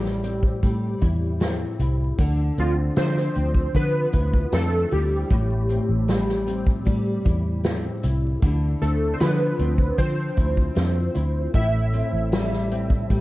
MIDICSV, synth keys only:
0, 0, Header, 1, 2, 480
1, 0, Start_track
1, 0, Tempo, 780234
1, 1345, Time_signature, 4, 2, 24, 8
1, 8126, End_track
2, 0, Start_track
2, 0, Title_t, "Synth keys"
2, 0, Program_c, 0, 88
2, 0, Note_on_c, 0, 67, 77
2, 1080, Note_off_c, 0, 67, 0
2, 1597, Note_on_c, 0, 65, 82
2, 1683, Note_off_c, 0, 65, 0
2, 1832, Note_on_c, 0, 72, 95
2, 2312, Note_on_c, 0, 71, 95
2, 2323, Note_off_c, 0, 72, 0
2, 2794, Note_on_c, 0, 69, 96
2, 2803, Note_off_c, 0, 71, 0
2, 3013, Note_off_c, 0, 69, 0
2, 3029, Note_on_c, 0, 67, 80
2, 4922, Note_off_c, 0, 67, 0
2, 5424, Note_on_c, 0, 69, 67
2, 5621, Note_on_c, 0, 72, 59
2, 5627, Note_off_c, 0, 69, 0
2, 5661, Note_on_c, 0, 71, 80
2, 5664, Note_off_c, 0, 72, 0
2, 6141, Note_on_c, 0, 72, 87
2, 6157, Note_off_c, 0, 71, 0
2, 7077, Note_off_c, 0, 72, 0
2, 7106, Note_on_c, 0, 76, 92
2, 8039, Note_off_c, 0, 76, 0
2, 8126, End_track
0, 0, End_of_file